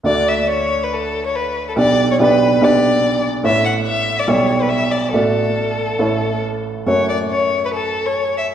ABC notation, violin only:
X:1
M:4/4
L:1/16
Q:1/4=141
K:D
V:1 name="Violin"
d2 e2 c3 B A3 c B3 A | d3 c B4 d6 z2 | e2 f2 e3 d c3 B e2 d2 | A12 z4 |
[K:F#m] c2 d2 c3 B A3 c3 e2 |]